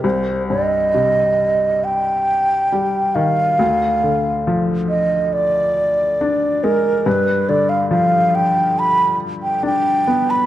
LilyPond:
<<
  \new Staff \with { instrumentName = "Flute" } { \time 4/4 \key c \minor \tempo 4 = 69 c''8 ees''4. g''4. f''8~ | f''4~ f''16 r16 ees''8 d''4. bes'8 | b'8 d''16 f''16 f''8 g''8 b''8 r16 g''16 g''8. b''16 | }
  \new Staff \with { instrumentName = "Upright piano" } { \clef bass \time 4/4 \key c \minor c,8 g,8 c2 g8 ees8 | d,8 d8 f2 d'8 aes8 | g,8 d8 f2 d'8 b8 | }
>>